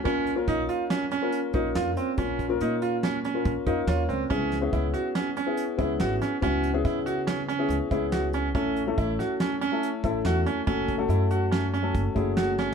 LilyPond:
<<
  \new Staff \with { instrumentName = "Grand piano" } { \time 5/4 \key cis \phrygian \tempo 4 = 141 << { r1 r4 | r2. r8 eis''8 cis''4 | r1 r4 | r1 r4 |
r1 r4 | r1 r4 | } \\ { <ais cis' eis' ais'>8. <ais cis' eis' ais'>4.~ <ais cis' eis' ais'>16 r16 <ais cis' eis' ais'>8. <ais cis' eis' ais'>4~ <ais cis' eis' ais'>16 r16 | <ais cis' eis' ais'>8. <ais cis' eis' ais'>4.~ <ais cis' eis' ais'>16 r16 <ais cis' eis' ais'>8. <ais cis' eis' ais'>4~ <ais cis' eis' ais'>16 r16 | <b cis' e' gis'>8. <b cis' e' gis'>4.~ <b cis' e' gis'>16 r16 <b cis' e' gis'>8. <b cis' e' gis'>4~ <b cis' e' gis'>16 r16 | <b cis' e' fis'>8. <b cis' e' gis'>4.~ <b cis' e' gis'>16 r16 <b cis' e' gis'>8. <b cis' e' gis'>4~ <b cis' e' gis'>16 r16 |
<a cis' e' a'>8. <a cis' e' a'>4.~ <a cis' e' a'>16 r16 <a cis' e' a'>8. <a cis' e' a'>4~ <a cis' e' a'>16 r16 | <a cis' fis' a'>8. <a cis' fis' a'>4.~ <a cis' fis' a'>16 r16 <a cis' fis' a'>8. <a cis' fis' gis'>4~ <a cis' fis' gis'>16 r16 | } >> }
  \new Staff \with { instrumentName = "Grand piano" } { \time 5/4 \key cis \phrygian cis'4 dis'8 eis'8 cis'8 cis'4 dis'8 eis'8 bis8 | cis'4 dis'8 eis'8 cis'8 cis'4 dis'8 eis'8 bis8 | cis'4 e'8 fis'8 cis'8 cis'4 e'8 fis'8 cis'8 | cis'4 e'8 fis'8 cis'8 cis'4 e'8 fis'8 cis'8 |
cis'4 e'8 fis'8 cis'8 cis'4 e'8 fis'8 cis'8 | cis'4 e'8 fis'8 cis'8 cis'4 e'8 fis'8 cis'8 | }
  \new Staff \with { instrumentName = "Upright bass" } { \clef bass \time 5/4 \key cis \phrygian ais,,4 ais,,8 r2 ais,,8 eis,8 r8 | ais,,4 ais,2 ais,,16 r16 eis,8 dis,8 cis,8 | cis,4 cis,8 r2 cis,8 gis,,8 r8 | cis,4 cis2 cis,16 r16 cis,4. |
a,,4 a,,8 r2 a,,8 e,8 r8 | fis,,4 fis,2 fis,,16 r16 fis,,4. | }
  \new DrumStaff \with { instrumentName = "Drums" } \drummode { \time 5/4 <hh bd>8 hh8 <hh bd>8 hh8 <hh sn>8 hh8 hh8 <hh bd>8 <hh sn>8 hh8 | <hh bd>8 <hh bd>8 hh8 hh8 <hh sn>8 hh8 <hh bd>8 <hh bd>8 <hh sn>8 hh8 | <hh bd>8 <hh sn>8 <hh bd>8 hh8 <hh sn>8 hh8 hh8 <hh bd>8 <hh sn>8 <hh sn>8 | <hh bd>8 hh8 <hh bd sn>8 hh8 <hh sn>8 hh8 hh8 <hh bd>8 <hh sn>8 hh8 |
<hh bd>8 hh8 <hh bd>8 <hh sn>8 <hh sn>8 hh8 hh8 <hh bd>8 <hh sn>8 hh8 | <hh bd>8 <hh bd>8 hh8 hh8 <hh sn>8 hh8 <hh bd>8 <hh bd>8 <hh sn>8 sn8 | }
>>